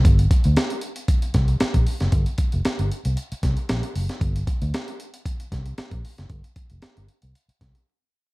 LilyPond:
<<
  \new Staff \with { instrumentName = "Fingered electric bass" } { \clef bass \time 4/4 \key c \mixolydian \tempo 4 = 115 g,,8 r16 d,16 r4. c,8 r16 bes,,16 r16 fis,,16 | g,,16 r8 f,,16 r16 g,,16 r16 c,16 r8 c,16 r16 bes,,16 r16 fis,,16 r16 | g,,8 r16 d,16 r4. c,8 r16 bes,,16 r16 fis,,16 | g,,16 r8 f,,16 r16 g,,16 r16 c,16 r8 c,16 r4 r16 | }
  \new DrumStaff \with { instrumentName = "Drums" } \drummode { \time 4/4 <hh bd>16 hh16 <hh bd>16 hh16 <hh sn>16 hh16 hh16 hh16 <hh bd>16 hh16 <hh bd sn>16 hh16 <hh sn>16 <hh bd>16 hho16 <hh sn>16 | <hh bd>16 hh16 <hh bd>16 hh16 <hh sn>16 hh16 hh16 hh16 hh16 hh16 <hh bd sn>16 hh16 <hh sn>16 hh16 hho16 <hh sn>16 | <hh bd>16 hh16 <hh bd>16 hh16 <hh sn>16 hh16 hh16 hh16 <hh bd>16 hh16 <hh bd sn>16 hh16 <hh sn>16 <hh bd>16 hho16 <hh sn>16 | <hh bd>16 hh16 <hh bd>16 hh16 <hh sn>16 hh16 hh16 hh16 hh16 hh16 <hh bd sn>16 hh16 r4 | }
>>